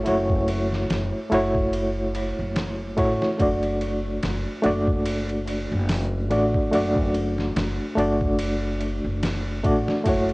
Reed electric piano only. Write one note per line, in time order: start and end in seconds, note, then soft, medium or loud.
0.00 0.04 A3 medium
0.00 1.26 A3 medium
0.00 0.05 E4 medium
0.00 0.07 F#4 medium
0.00 0.09 C#5 loud
0.05 1.26 E4 medium
0.05 1.27 F#4 medium
0.05 1.28 C#5 medium
1.30 2.93 A3 medium
1.30 2.94 E4 medium
1.30 2.94 F#4 medium
1.34 2.95 C#5 loud
2.97 3.35 A3 medium
2.97 3.35 E4 medium
2.97 3.35 F#4 medium
2.97 3.36 C#5 medium
3.37 4.59 A3 medium
3.37 4.60 D4 medium
3.37 4.60 F#4 medium
3.42 4.61 D5 medium
4.62 6.26 A3 medium
4.62 6.26 D4 medium
4.62 6.27 F#4 medium
4.66 6.28 D5 loud
6.30 6.68 A3 medium
6.30 6.68 D4 medium
6.30 6.69 F#4 medium
6.30 6.69 D5 medium
6.71 7.93 A3 medium
6.71 7.93 D4 medium
6.71 7.94 F#4 medium
6.75 7.95 D5 medium
7.95 9.59 A3 medium
7.95 9.60 D4 medium
7.95 9.60 F#4 medium
7.99 9.61 D5 loud
9.64 10.01 A3 medium
9.64 10.02 D4 medium
9.64 10.02 F#4 medium
9.64 10.03 D5 medium
10.04 10.33 A3 medium
10.04 10.33 E4 medium
10.04 10.33 F#4 medium
10.09 10.33 C#5 medium